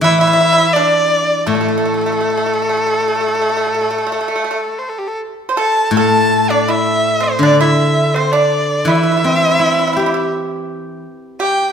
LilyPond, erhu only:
\new Staff \with { instrumentName = "Erhu" } { \time 4/4 \tempo 4 = 82 e''16 e''8. d''4 a'2~ | a'2~ a'8 c''32 a'32 g'32 a'32 r8 a''8 | a''8. d''16 e''8. c''16 d''16 e''8. c''16 d''8. | e''2 r4. g''8 | }